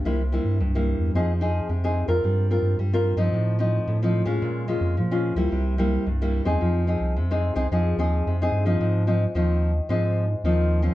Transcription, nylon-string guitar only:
\new Staff \with { instrumentName = "Nylon-string guitar" } { \time 4/4 \key f \minor \tempo 4 = 110 << { <g bes e'>16 r16 <g bes e'>8 r16 <g bes e'>8. <c' ees' aes'>16 r16 <c' ees' aes'>8 r16 <c' ees' aes'>8 <c' f' bes'>16~ | <c' f' bes'>8 <c' f' bes'>8 r16 <c' f' bes'>8 <f c' ees'>8. <f c' ees'>8. <f c' ees'>8 <aes des' f'>16~ | <aes des' f'>8 <aes des' f'>8 r16 <aes des' f'>8 <g bes e'>8. <g bes e'>8 r16 <g bes e'>8 <c' ees' aes'>16~ | <c' ees' aes'>8 <c' ees' aes'>8 r16 <c' ees' aes'>8 <c' ees' aes'>16 <c' ees' aes'>8 <c' ees' aes'>8. <c' ees' aes'>8 <f c' ees'>16~ |
\key aes \major <f c' ees'>8 <f c' ees'>16 r16 <f c' ees'>8. r16 <f c' ees'>8. r16 <f c' ees'>8. <f c' des'>16 | } \\ { c4 g,4 f4 c4 | g4 g4 a,4 a,4 | bes,4 f4 c4 g,4 | f4 c4 f4 c4 |
aes,4 ees4 aes,4 ees4 | } >> }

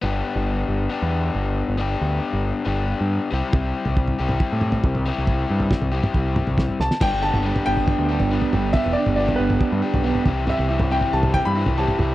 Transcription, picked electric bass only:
\new Staff \with { instrumentName = "Picked electric bass" } { \clef bass \time 4/4 \key g \major \tempo 4 = 138 g,,8 r16 g,,8. g,,8 r16 e,8. g,,8. g,,16~ | g,,8 d,8 r16 g,,8 r16 g,,8. g,8 r16 c,16 r16 | c,8 r16 c,8. c,8 r16 a,8. c,8. c,16~ | c,8 g,8 r16 c,8 r16 c,8. c,8 r16 c,16 r16 |
g,,16 g,,8 g,,8 r16 g,,8. d,8 g,,8 r16 g,,8 | r16 e,,16 r16 g,,8. g,,8 r16 g,16 r16 b,,8 r16 c,8~ | c,16 c,8 c,8 r16 c,8. g,8 c,8 r16 c,8 | }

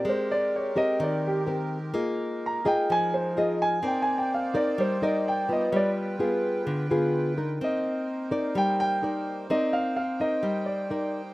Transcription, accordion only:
\new Staff \with { instrumentName = "Accordion" } { \time 4/4 \key g \phrygian \tempo 4 = 127 << { bes'1~ | bes'1 | d''1 | g''1 |
\key c \minor bes'1 | g''1 | } \\ { <aes c' g'>1 | <aes ees'>1 | <bes c''>1 | <f' b'>1 |
<bes ees' c''>1~ | <bes ees' c''>1 | } >> }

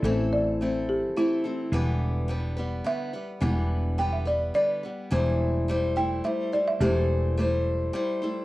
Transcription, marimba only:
\new Staff \with { instrumentName = "Marimba" } { \time 3/4 \key e \minor \tempo 4 = 106 a'8 d''4 g'8 e'4 | r2 e''4~ | e''4 g''16 e''16 d''8 d''4~ | d''4 r8 g''8 e''8 d''16 e''16 |
g'2. | }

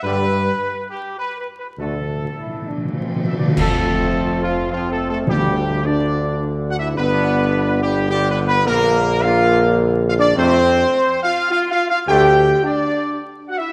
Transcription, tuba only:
\new Staff \with { instrumentName = "Tuba" } { \clef bass \time 3/4 \key d \mixolydian \tempo 4 = 105 g,4 r2 | d,4 r2 | f,2. | d,2. |
g,,2. | bes,,2. | f,4 r2 | d,4 r2 | }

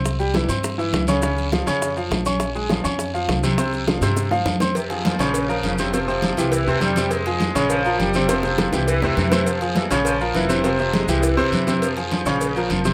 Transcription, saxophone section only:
\new Staff \with { instrumentName = "Saxophone section" } { \clef bass \time 4/4 \key c \phrygian \tempo 4 = 204 r1 | r1 | r1 | r1 |
\key f \minor c4 f4 des4 des4 | f2 e4 g4 | aes2 f4 g4 | f2 e4 e4 |
f4 e8 f8 f4 e4 | f4 aes4 e2 | f4 f4 des4 f8 r8 | }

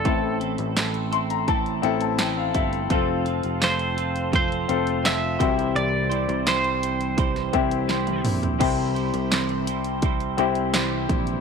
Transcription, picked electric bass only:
\new Staff \with { instrumentName = "Picked electric bass" } { \clef bass \time 4/4 \key c \mixolydian \tempo 4 = 84 a,,8. a,,4.~ a,,16 a,,4 g,,8 | f,,8. f,,4.~ f,,16 f,,4 c,8 | c,8. c,4.~ c,16 c,4 bes,,8 | c,8. c,4.~ c,16 c,4 bes,,8 | }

